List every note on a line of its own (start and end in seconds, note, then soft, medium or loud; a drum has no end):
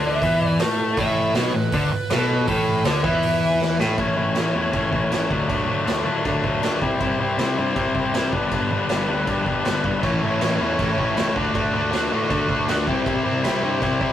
0.00 0.19 D2 loud
0.00 0.21 D3 loud
0.07 0.58 E5 loud
0.22 0.57 E2 loud
0.22 0.60 E3 loud
0.22 kick loud
0.22 open hi-hat medium
0.59 0.95 A2 loud
0.59 0.97 A3 loud
0.59 snare loud
0.59 open hi-hat medium
0.97 1.32 A1 loud
0.97 1.35 A2 loud
0.97 1.37 E5 loud
0.97 kick loud
0.97 open hi-hat medium
1.35 1.52 B1 loud
1.35 1.54 B2 loud
1.35 1.55 C#5 loud
1.35 snare loud
1.35 open hi-hat medium
1.53 1.71 A1 medium
1.53 1.69 A2 medium
1.53 2.13 B4 loud
1.72 1.90 D2 loud
1.72 1.92 D3 loud
1.72 kick loud
1.72 open hi-hat medium
1.92 muted picked electric bass stroke soft
1.92 muted overdriven electric guitar stroke medium
1.92 muted distorted electric guitar stroke medium
2.10 2.45 B1 loud
2.10 2.48 B2 loud
2.10 2.47 A4 medium
2.10 snare loud
2.10 open hi-hat medium
2.47 2.83 A1 loud
2.47 2.85 A2 loud
2.47 2.83 A4 loud
2.47 kick loud
2.47 open hi-hat medium
2.85 3.03 D2 loud
2.85 3.04 D3 loud
2.85 3.06 C#5 loud
2.85 snare loud
2.85 open hi-hat medium
3.04 3.76 E2 loud
3.04 3.79 E3 loud
3.04 3.58 E5 loud
3.04 kick loud
3.23 open hi-hat medium
3.61 snare medium
3.79 3.98 A1 medium
3.79 3.97 A2 loud
3.79 snare loud
3.98 4.16 A1 medium
3.98 4.15 A2 medium
3.98 4.16 E3 loud
3.98 4.17 A3 loud
3.98 4.16 C#4 loud
3.98 4.17 E4 loud
3.98 kick loud
3.98 crash medium
4.16 4.34 A1 medium
4.16 4.36 A2 medium
4.16 4.36 E3 medium
4.16 4.37 A3 medium
4.16 4.37 C#4 medium
4.16 4.38 E4 loud
4.35 4.53 A1 medium
4.35 4.53 A2 medium
4.35 4.53 E3 medium
4.35 4.54 A3 medium
4.35 4.54 C#4 loud
4.35 4.55 E4 medium
4.35 snare loud
4.35 crash medium
4.54 4.72 E2 medium
4.54 4.71 A2 medium
4.54 4.72 E3 medium
4.54 4.72 A3 medium
4.54 4.73 C#4 loud
4.54 4.73 E4 medium
4.72 4.90 A2 loud
4.72 4.91 A2 medium
4.72 4.91 E3 loud
4.72 4.92 A3 loud
4.72 4.92 C#4 loud
4.72 4.93 E4 loud
4.72 kick loud
4.72 crash medium
4.91 5.10 A1 loud
4.91 5.10 A2 medium
4.91 5.11 E3 medium
4.91 5.11 A3 medium
4.91 5.11 C#4 medium
4.91 5.12 E4 medium
4.91 kick medium
5.11 5.29 A1 medium
5.11 5.29 A2 medium
5.11 5.30 E3 loud
5.11 5.30 A3 loud
5.11 5.30 C#4 loud
5.11 5.31 E4 loud
5.11 snare loud
5.11 crash medium
5.30 5.48 D2 medium
5.30 5.47 D3 loud
5.30 5.48 F#3 loud
5.30 5.48 A3 loud
5.30 5.49 D4 loud
5.30 kick medium
5.48 5.67 D2 medium
5.48 5.65 D3 loud
5.48 5.67 F#3 medium
5.48 5.67 A3 loud
5.48 5.67 D4 loud
5.48 kick loud
5.48 crash medium
5.67 5.85 D2 medium
5.67 5.84 D3 medium
5.67 5.85 F#3 medium
5.67 5.85 A3 medium
5.67 5.85 D4 loud
5.85 6.05 D2 medium
5.85 6.03 D3 loud
5.85 6.04 F#3 medium
5.85 6.04 A3 loud
5.85 6.04 D4 loud
5.85 snare loud
5.85 crash medium
6.04 6.24 A2 medium
6.04 6.22 D3 medium
6.04 6.23 F#3 medium
6.04 6.24 A3 loud
6.04 6.24 D4 medium
6.23 6.42 D3 loud
6.23 6.43 F#3 loud
6.23 6.43 A3 loud
6.23 6.44 D4 loud
6.23 kick loud
6.23 crash medium
6.43 6.61 D2 loud
6.43 6.61 D3 medium
6.43 6.62 F#3 medium
6.43 6.62 A3 medium
6.43 6.63 D4 loud
6.43 kick medium
6.62 6.83 D2 medium
6.62 6.81 D3 loud
6.62 6.81 F#3 loud
6.62 6.81 A3 loud
6.62 6.82 D4 loud
6.62 snare loud
6.62 crash medium
6.81 6.99 C2 medium
6.81 6.99 C3 medium
6.81 7.00 G3 loud
6.81 7.00 C4 loud
6.81 7.01 E4 loud
6.81 kick loud
7.00 7.18 C2 loud
7.00 7.17 C3 loud
7.00 7.20 G3 loud
7.00 7.19 C4 loud
7.00 7.19 E4 loud
7.00 kick loud
7.00 crash medium
7.19 7.37 C2 medium
7.19 7.36 C3 medium
7.19 7.38 G3 medium
7.19 7.38 C4 medium
7.19 7.39 E4 medium
7.38 7.56 C2 medium
7.38 7.56 C3 medium
7.38 7.58 G3 loud
7.38 7.58 C4 loud
7.38 7.57 E4 loud
7.38 snare loud
7.38 crash medium
7.57 7.75 G2 medium
7.57 7.74 C3 medium
7.57 7.74 G3 loud
7.57 7.75 C4 loud
7.57 7.76 E4 loud
7.75 7.93 C3 medium
7.75 7.94 C3 loud
7.75 7.94 G3 medium
7.75 7.94 C4 loud
7.75 7.95 E4 loud
7.75 kick loud
7.75 crash medium
7.94 8.12 C2 medium
7.94 8.12 C3 loud
7.94 8.13 G3 medium
7.94 8.14 C4 medium
7.94 8.14 E4 loud
7.94 kick medium
8.14 8.32 C2 medium
8.14 8.32 C3 loud
8.14 8.32 G3 loud
8.14 8.33 C4 medium
8.14 8.33 E4 loud
8.14 snare loud
8.14 crash medium
8.33 8.50 G1 medium
8.33 8.50 G2 loud
8.33 8.51 D3 loud
8.33 8.52 G3 loud
8.33 8.52 B3 medium
8.33 8.53 D4 medium
8.33 kick medium
8.51 8.69 G1 medium
8.51 8.70 G2 loud
8.51 8.70 D3 medium
8.51 8.71 G3 loud
8.51 8.71 B3 loud
8.51 8.71 D4 loud
8.51 kick loud
8.51 crash medium
8.71 8.88 G1 medium
8.71 8.88 G2 medium
8.71 8.89 D3 medium
8.71 8.89 G3 medium
8.71 8.90 B3 medium
8.71 8.90 D4 medium
8.89 9.07 G1 medium
8.89 9.07 G2 medium
8.89 9.07 D3 medium
8.89 9.08 G3 loud
8.89 9.08 B3 loud
8.89 9.09 D4 loud
8.89 snare loud
8.89 crash medium
9.08 9.26 D2 medium
9.08 9.26 G2 loud
9.08 9.27 D3 medium
9.08 9.28 G3 loud
9.08 9.28 B3 medium
9.08 9.28 D4 loud
9.27 9.45 G2 medium
9.27 9.44 G2 loud
9.27 9.45 D3 loud
9.27 9.46 G3 loud
9.27 9.46 B3 loud
9.27 9.46 D4 loud
9.27 kick loud
9.27 crash medium
9.46 9.64 G1 loud
9.46 9.63 G2 medium
9.46 9.64 D3 medium
9.46 9.64 G3 medium
9.46 9.65 B3 medium
9.46 9.65 D4 medium
9.46 kick medium
9.65 9.82 G1 medium
9.65 9.82 G2 medium
9.65 9.83 D3 loud
9.65 9.83 G3 loud
9.65 9.84 B3 loud
9.65 9.84 D4 medium
9.65 snare loud
9.65 crash medium
9.84 10.01 G1 medium
9.84 10.02 G2 medium
9.84 10.02 D3 medium
9.84 10.02 G3 medium
9.84 10.03 B3 medium
9.84 10.03 D4 medium
9.84 kick medium
10.03 10.20 A1 medium
10.03 10.21 A2 loud
10.03 10.22 E3 loud
10.03 10.23 A3 loud
10.03 10.23 C#4 loud
10.03 10.23 E4 loud
10.03 kick loud
10.03 crash medium
10.22 10.39 A1 medium
10.22 10.39 A2 medium
10.22 10.40 E3 medium
10.22 10.41 A3 medium
10.22 10.41 C#4 medium
10.22 10.42 E4 medium
10.41 10.58 A1 medium
10.41 10.59 A2 medium
10.41 10.60 E3 loud
10.41 10.60 A3 loud
10.41 10.60 C#4 loud
10.41 10.61 E4 loud
10.41 snare loud
10.41 crash medium
10.60 10.77 E2 medium
10.60 10.78 A2 medium
10.60 10.78 E3 medium
10.60 10.78 A3 medium
10.60 10.79 C#4 loud
10.60 10.79 E4 loud
10.79 10.97 A2 loud
10.79 10.96 A2 medium
10.79 10.97 E3 medium
10.79 10.98 A3 loud
10.79 10.98 C#4 loud
10.79 10.99 E4 loud
10.79 kick loud
10.79 crash medium
10.98 11.15 A1 medium
10.98 11.16 A2 medium
10.98 11.17 E3 medium
10.98 11.18 A3 medium
10.98 11.17 C#4 medium
10.98 11.18 E4 medium
10.98 kick medium
11.16 11.36 C#2 medium
11.16 11.35 A2 loud
11.16 11.35 E3 loud
11.16 11.36 A3 loud
11.16 11.36 C#4 loud
11.16 11.36 E4 loud
11.16 snare loud
11.16 crash medium
11.36 11.53 D2 medium
11.36 11.53 D3 loud
11.36 11.54 A3 medium
11.36 11.55 D4 loud
11.36 11.55 F#4 loud
11.36 kick medium
11.55 11.72 D2 medium
11.55 11.72 D3 medium
11.55 11.73 A3 loud
11.55 11.73 D4 loud
11.55 11.73 F#4 loud
11.55 kick loud
11.55 crash medium
11.73 11.91 D2 medium
11.73 11.90 D3 medium
11.73 11.90 A3 medium
11.73 11.91 D4 medium
11.73 11.91 F#4 medium
11.91 12.10 D2 medium
11.91 12.10 D3 loud
11.91 12.10 A3 medium
11.91 12.11 D4 loud
11.91 12.12 F#4 loud
11.91 snare loud
11.91 crash medium
12.11 12.29 A2 medium
12.11 12.28 D3 medium
12.11 12.29 A3 medium
12.11 12.29 D4 loud
12.11 12.30 F#4 medium
12.29 12.47 D3 medium
12.29 12.48 A3 loud
12.29 12.48 D4 loud
12.29 12.48 F#4 loud
12.29 kick loud
12.29 crash medium
12.48 12.66 D2 loud
12.48 12.67 D3 medium
12.48 12.68 A3 loud
12.48 12.69 D4 loud
12.48 12.69 F#4 loud
12.48 kick medium
12.68 12.89 D2 medium
12.68 12.86 D3 loud
12.68 12.86 A3 loud
12.68 12.87 D4 loud
12.68 12.87 F#4 loud
12.68 snare loud
12.68 crash medium
12.87 13.04 C2 medium
12.87 13.04 C3 loud
12.87 13.06 G3 loud
12.87 13.05 C4 loud
12.87 13.06 E4 loud
12.87 kick medium
13.06 13.23 C2 loud
13.06 13.22 C3 loud
13.06 13.24 G3 loud
13.06 13.24 C4 medium
13.06 13.24 E4 loud
13.06 kick loud
13.06 crash medium
13.24 13.42 C2 medium
13.24 13.42 C3 medium
13.24 13.43 G3 medium
13.24 13.43 C4 medium
13.24 13.43 E4 medium
13.43 13.61 C2 medium
13.43 13.61 C3 loud
13.43 13.63 G3 loud
13.43 13.63 C4 loud
13.43 13.64 E4 loud
13.43 snare loud
13.43 crash medium
13.63 13.80 G2 medium
13.63 13.80 C3 medium
13.63 13.81 G3 medium
13.63 13.81 C4 loud
13.63 13.81 E4 medium
13.81 13.99 C3 loud
13.81 13.99 C3 medium
13.81 14.01 G3 loud
13.81 14.00 C4 loud
13.81 14.01 E4 loud
13.81 kick loud
13.81 crash medium
14.00 14.13 C2 loud
14.00 14.13 C3 medium
14.00 14.13 G3 medium
14.00 14.13 C4 medium
14.00 14.13 E4 medium
14.00 kick medium